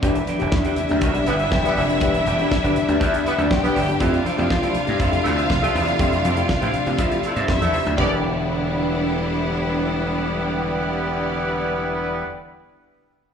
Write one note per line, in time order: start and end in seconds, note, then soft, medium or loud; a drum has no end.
0.02 0.20 E1 loud
0.02 3.96 D3 medium
0.02 3.96 G3 medium
0.02 0.15 B3 medium
0.02 3.96 B3 medium
0.02 0.16 D4 medium
0.02 0.17 D4 medium
0.02 7.93 D4 medium
0.02 3.46 E4 medium
0.02 0.16 G4 loud
0.02 0.17 G4 loud
0.02 0.17 B4 loud
0.02 3.46 E5 loud
0.02 0.17 E5 medium
0.02 kick loud
0.02 closed hi-hat medium
0.15 closed hi-hat medium
0.15 muted conga soft
0.27 0.40 E3 medium
0.27 0.38 D4 medium
0.27 0.39 G4 medium
0.27 0.39 B4 medium
0.27 0.39 G5 medium
0.27 closed hi-hat medium
0.27 high conga medium
0.39 0.50 E1 medium
0.39 0.52 B3 medium
0.39 0.52 D4 medium
0.39 0.52 D4 soft
0.39 0.53 G4 medium
0.39 0.52 G4 medium
0.39 0.51 B4 medium
0.39 0.51 G5 medium
0.39 closed hi-hat soft
0.52 0.70 E2 medium
0.52 muted clean electric guitar stroke soft
0.52 kick loud
0.52 snare loud
0.52 high conga medium
0.64 0.77 B3 medium
0.64 0.78 D4 medium
0.64 0.77 D4 medium
0.64 0.78 G4 medium
0.64 0.78 B4 medium
0.64 0.79 G5 medium
0.64 closed hi-hat soft
0.76 0.90 E3 medium
0.76 muted clean electric guitar stroke soft
0.76 closed hi-hat medium
0.76 low conga medium
0.89 0.99 D2 loud
0.89 1.02 B3 medium
0.89 1.03 D4 medium
0.89 1.03 G4 loud
0.89 muted clean electric guitar stroke medium
0.89 closed hi-hat soft
1.01 1.20 B1 loud
1.01 1.15 E3 medium
1.01 1.23 D4 medium
1.01 1.16 G4 medium
1.01 1.15 B4 medium
1.01 1.15 E5 loud
1.01 kick loud
1.01 closed hi-hat medium
1.14 1.27 B3 medium
1.14 1.25 D4 medium
1.14 1.25 G4 medium
1.14 muted clean electric guitar stroke medium
1.14 closed hi-hat soft
1.14 muted conga soft
1.26 1.45 G1 loud
1.26 1.35 G3 medium
1.26 1.35 B3 medium
1.26 1.32 D4 soft
1.26 1.35 E4 medium
1.26 1.32 G4 soft
1.26 1.35 B4 loud
1.26 muted clean electric guitar stroke soft
1.26 closed hi-hat medium
1.39 1.51 D4 soft
1.39 1.51 G4 medium
1.39 1.51 B4 medium
1.39 1.51 E5 medium
1.39 closed hi-hat soft
1.52 1.69 E1 medium
1.52 kick loud
1.52 snare loud
1.52 muted conga soft
1.52 high conga medium
1.63 1.80 G3 loud
1.63 1.77 B3 medium
1.63 1.80 B3 loud
1.63 1.77 D4 medium
1.63 1.80 E4 medium
1.63 1.77 G4 medium
1.63 1.80 B4 loud
1.63 muted clean electric guitar stroke soft
1.63 closed hi-hat medium
1.63 muted conga soft
1.63 high conga medium
1.75 2.02 F1 loud
1.75 1.90 E3 medium
1.75 1.91 D4 medium
1.75 1.89 G4 medium
1.75 1.89 B4 loud
1.75 1.88 E5 medium
1.75 open hi-hat medium
1.75 low conga medium
1.89 2.01 B3 medium
1.89 2.01 D4 medium
1.89 2.01 G4 medium
1.89 muted clean electric guitar stroke soft
1.89 closed hi-hat soft
2.00 2.19 E1 loud
2.00 2.15 B3 medium
2.00 2.15 D4 medium
2.00 2.15 G4 loud
2.00 2.16 G4 medium
2.00 2.16 B4 medium
2.00 2.16 E5 loud
2.00 kick loud
2.00 closed hi-hat medium
2.14 closed hi-hat medium
2.14 muted conga soft
2.25 2.44 E1 loud
2.25 2.39 E3 medium
2.25 2.37 D4 medium
2.25 2.37 G4 medium
2.25 2.38 B4 medium
2.25 2.37 G5 medium
2.25 closed hi-hat medium
2.25 high conga medium
2.39 2.52 B3 medium
2.39 2.52 D4 medium
2.39 2.49 D4 soft
2.39 2.52 G4 medium
2.39 2.50 G4 medium
2.39 2.50 B4 medium
2.39 2.50 G5 medium
2.39 closed hi-hat soft
2.51 muted clean electric guitar stroke soft
2.51 kick loud
2.51 snare loud
2.51 muted conga soft
2.51 high conga medium
2.63 2.73 G1 medium
2.63 2.77 B3 medium
2.63 2.77 D4 medium
2.63 2.75 D4 medium
2.63 2.77 G4 medium
2.63 2.76 G4 medium
2.63 2.76 B4 medium
2.63 2.77 G5 medium
2.63 closed hi-hat soft
2.76 2.89 E3 medium
2.76 muted clean electric guitar stroke soft
2.76 closed hi-hat medium
2.76 low conga medium
2.88 2.97 D2 medium
2.88 3.01 B3 medium
2.88 3.02 D4 medium
2.88 3.02 G4 loud
2.88 muted clean electric guitar stroke medium
2.88 closed hi-hat soft
3.00 3.19 E2 loud
3.00 3.14 E3 medium
3.00 3.14 D4 medium
3.00 3.13 G4 loud
3.00 3.12 B4 medium
3.00 3.12 E5 loud
3.00 kick loud
3.00 closed hi-hat medium
3.13 3.26 B3 medium
3.13 3.25 D4 medium
3.13 3.25 G4 medium
3.13 muted clean electric guitar stroke medium
3.13 closed hi-hat medium
3.13 muted conga soft
3.25 3.33 G3 medium
3.25 3.34 B3 loud
3.25 3.31 D4 soft
3.25 3.34 E4 medium
3.25 3.31 G4 soft
3.25 3.34 B4 loud
3.25 muted clean electric guitar stroke soft
3.25 closed hi-hat medium
3.37 3.47 D2 loud
3.37 3.49 D4 medium
3.37 3.49 G4 medium
3.37 3.49 B4 medium
3.37 3.49 E5 medium
3.37 closed hi-hat soft
3.50 3.68 B1 medium
3.50 3.99 G4 medium
3.50 3.99 G5 medium
3.50 kick loud
3.50 snare loud
3.50 muted conga soft
3.50 high conga medium
3.62 3.79 G3 medium
3.62 3.79 B3 loud
3.62 3.76 B3 medium
3.62 3.76 D4 medium
3.62 3.79 E4 medium
3.62 3.77 G4 medium
3.62 3.79 B4 loud
3.62 muted clean electric guitar stroke soft
3.62 closed hi-hat medium
3.62 high conga medium
3.75 3.93 G1 loud
3.75 3.89 E3 medium
3.75 3.89 D4 medium
3.75 3.87 G4 loud
3.75 3.87 B4 medium
3.75 3.86 E5 medium
3.75 snare soft
3.75 open hi-hat medium
3.75 low conga medium
3.88 4.01 B3 medium
3.88 4.01 D4 medium
3.88 4.00 G4 medium
3.88 muted clean electric guitar stroke soft
3.88 closed hi-hat medium
3.99 4.18 F2 loud
3.99 7.94 C3 medium
3.99 7.94 F3 medium
3.99 4.13 A3 loud
3.99 7.94 A3 medium
3.99 4.14 E4 medium
3.99 4.13 E4 medium
3.99 7.44 F4 medium
3.99 4.14 G4 loud
3.99 4.14 A4 medium
3.99 4.15 C5 medium
3.99 4.15 E5 loud
3.99 7.43 F5 loud
3.99 kick loud
3.99 closed hi-hat medium
3.99 muted conga soft
4.14 closed hi-hat medium
4.25 4.38 F3 medium
4.25 4.36 E4 medium
4.25 4.36 A4 medium
4.25 4.37 C5 medium
4.25 4.36 G5 medium
4.25 closed hi-hat medium
4.25 high conga medium
4.37 4.47 F2 medium
4.37 4.50 A3 medium
4.37 4.50 E4 medium
4.37 4.49 E4 medium
4.37 4.50 G4 medium
4.37 4.49 A4 medium
4.37 4.48 C5 medium
4.37 4.48 G5 medium
4.37 closed hi-hat soft
4.50 4.68 F3 medium
4.50 muted clean electric guitar stroke soft
4.50 kick loud
4.50 snare loud
4.50 muted conga soft
4.50 high conga medium
4.62 4.75 A3 medium
4.62 4.75 E4 medium
4.62 4.75 G4 medium
4.62 4.75 A4 medium
4.62 4.76 C5 medium
4.62 4.76 G5 medium
4.62 closed hi-hat soft
4.62 muted conga soft
4.74 4.88 F3 medium
4.74 muted clean electric guitar stroke soft
4.74 closed hi-hat medium
4.74 low conga medium
4.87 5.02 G2 medium
4.87 5.00 A3 medium
4.87 5.00 E4 medium
4.87 5.00 G4 loud
4.87 muted clean electric guitar stroke soft
4.87 closed hi-hat soft
5.00 5.17 F2 loud
5.00 5.12 F3 medium
5.00 5.14 E4 medium
5.00 5.13 A4 medium
5.00 5.13 C5 medium
5.00 5.12 E5 loud
5.00 kick loud
5.00 closed hi-hat medium
5.00 muted conga soft
5.11 5.25 A3 medium
5.11 5.24 E4 medium
5.11 5.24 G4 medium
5.11 muted clean electric guitar stroke medium
5.11 closed hi-hat medium
5.11 muted conga soft
5.24 5.43 D2 medium
5.24 5.32 F3 medium
5.24 5.32 A3 medium
5.24 5.32 E4 medium
5.24 5.30 E4 soft
5.24 5.30 G4 medium
5.24 5.32 A4 loud
5.24 muted clean electric guitar stroke soft
5.24 closed hi-hat medium
5.37 5.49 E4 medium
5.37 5.49 A4 medium
5.37 5.48 C5 medium
5.37 5.48 E5 medium
5.37 closed hi-hat soft
5.50 5.67 C2 medium
5.50 kick loud
5.50 snare loud
5.50 muted conga soft
5.50 high conga medium
5.62 5.93 F3 loud
5.62 5.75 A3 medium
5.62 5.93 A3 loud
5.62 5.75 E4 medium
5.62 5.93 F4 loud
5.62 5.75 G4 loud
5.62 5.93 A4 loud
5.62 muted clean electric guitar stroke medium
5.62 closed hi-hat medium
5.62 high conga medium
5.74 5.92 E2 medium
5.74 5.87 F3 medium
5.74 5.89 E4 medium
5.74 5.88 A4 medium
5.74 5.87 C5 medium
5.74 5.86 E5 loud
5.74 snare soft
5.74 open hi-hat medium
5.74 low conga medium
5.87 5.98 A3 medium
5.87 5.99 E4 medium
5.87 5.99 G4 medium
5.87 muted clean electric guitar stroke soft
5.87 closed hi-hat soft
5.99 6.17 F2 loud
5.99 6.12 A3 medium
5.99 6.13 E4 medium
5.99 6.12 E4 medium
5.99 6.13 G4 loud
5.99 6.13 A4 medium
5.99 6.13 C5 medium
5.99 6.14 E5 medium
5.99 kick loud
5.99 closed hi-hat medium
5.99 muted conga soft
6.12 closed hi-hat soft
6.12 muted conga soft
6.23 6.42 F2 loud
6.23 6.37 F3 medium
6.23 6.35 E4 medium
6.23 6.35 A4 medium
6.23 6.35 C5 medium
6.23 6.35 G5 medium
6.23 closed hi-hat medium
6.23 high conga medium
6.36 6.49 A3 medium
6.36 6.49 E4 medium
6.36 6.48 E4 medium
6.36 6.50 G4 medium
6.36 6.48 A4 medium
6.36 6.47 C5 medium
6.36 6.47 G5 medium
6.36 closed hi-hat soft
6.49 muted clean electric guitar stroke soft
6.49 kick loud
6.49 snare loud
6.49 muted conga soft
6.49 high conga medium
6.60 6.71 A2 medium
6.60 6.74 A3 medium
6.60 6.74 E4 medium
6.60 6.73 E4 medium
6.60 6.74 G4 medium
6.60 6.74 A4 medium
6.60 6.74 C5 medium
6.60 6.75 G5 medium
6.60 closed hi-hat soft
6.60 muted conga soft
6.73 6.86 F3 medium
6.73 muted clean electric guitar stroke soft
6.73 closed hi-hat medium
6.73 low conga medium
6.86 6.95 C3 medium
6.86 6.99 A3 medium
6.86 6.99 E4 medium
6.86 6.99 G4 medium
6.86 muted clean electric guitar stroke soft
6.86 closed hi-hat soft
6.98 7.11 F3 medium
6.98 7.16 F3 medium
6.98 7.12 E4 medium
6.98 7.11 A4 medium
6.98 7.10 C5 medium
6.98 7.10 E5 loud
6.98 kick loud
6.98 closed hi-hat medium
6.98 muted conga soft
7.10 7.23 A3 medium
7.10 7.22 E4 medium
7.10 7.22 G4 medium
7.10 muted clean electric guitar stroke soft
7.10 closed hi-hat medium
7.10 muted conga soft
7.23 7.32 F3 medium
7.23 7.32 A3 medium
7.23 7.28 E4 soft
7.23 7.32 E4 medium
7.23 7.28 G4 soft
7.23 7.32 A4 medium
7.23 muted clean electric guitar stroke soft
7.23 closed hi-hat medium
7.36 7.50 G2 loud
7.36 7.48 E4 medium
7.36 7.47 A4 medium
7.36 7.47 C5 medium
7.36 7.47 E5 medium
7.36 closed hi-hat soft
7.48 7.57 F2 medium
7.48 7.61 E4 medium
7.48 7.97 E4 medium
7.48 7.61 G4 medium
7.48 7.97 E5 medium
7.48 kick loud
7.48 snare loud
7.48 muted conga soft
7.48 high conga medium
7.61 7.69 E2 medium
7.61 7.77 F3 medium
7.61 7.74 F3 medium
7.61 7.76 A3 medium
7.61 7.76 E4 loud
7.61 7.76 A4 loud
7.61 muted clean electric guitar stroke medium
7.61 closed hi-hat medium
7.61 muted conga soft
7.61 high conga medium
7.73 7.86 E4 medium
7.73 7.87 E4 medium
7.73 7.87 G4 medium
7.73 7.86 A4 medium
7.73 7.86 C5 medium
7.73 7.86 E5 medium
7.73 open hi-hat medium
7.73 low conga medium
7.86 7.95 D2 medium
7.86 muted clean electric guitar stroke soft
7.86 closed hi-hat soft
7.97 12.22 E1 medium
7.97 12.22 D3 medium
7.97 12.21 G3 loud
7.97 12.21 G3 medium
7.97 12.20 B3 medium
7.97 12.21 B3 medium
7.97 12.22 B3 medium
7.97 12.21 D4 medium
7.97 12.25 D4 medium
7.97 12.21 E4 medium
7.97 12.21 G4 loud
7.97 12.21 G4 medium
7.97 12.27 G4 medium
7.97 12.21 B4 loud
7.97 12.21 D5 loud
7.97 kick loud
7.97 floor tom loud
7.97 high conga medium
8.02 12.29 B4 medium
8.02 12.30 E5 medium